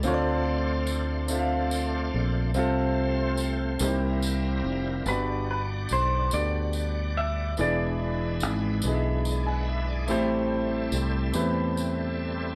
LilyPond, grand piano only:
<<
  \new Staff \with { instrumentName = "Grand piano" } { \time 6/8 \key d \minor \tempo 4. = 48 << { r2. | r2. | \key g \major r2. | r2 b''16 gis''16 e''16 d''16~ |
d''16 r2 r8. | } \\ { <c' d' f' a' des'' d''>4~ <c' d' f' a' des'' d''>16 r16 <c' d' f' a' e'' f''>4~ <c' d' f' a' e'' f''>16 r16 | <c' f' a'>4~ <c' f' a'>16 r16 <bes c' ees' e' g' c''>4~ <bes c' ees' e' g' c''>16 r16 | <b d' fis' g' d''>4~ <b d' fis' g' d''>16 r16 <b d' fis' g' d''>4~ <b d' fis' g' d''>16 r16 | <b d' e' gis' d''>4~ <b d' e' gis' d''>16 r16 <b d' e' gis' ees'' e''>4~ <b d' e' gis' ees'' e''>16 r16 |
<a c' e' g' c''>4~ <a c' e' g' c''>16 r16 <a b c' e' g' b'>4~ <a b c' e' g' b'>16 r16 | } >> }
  \new Staff \with { instrumentName = "Grand piano" } { \clef bass \time 6/8 \key d \minor d4. r4. | c4. c4. | \key g \major g,4. r4. | e4. r4. |
a,4. r4. | }
>>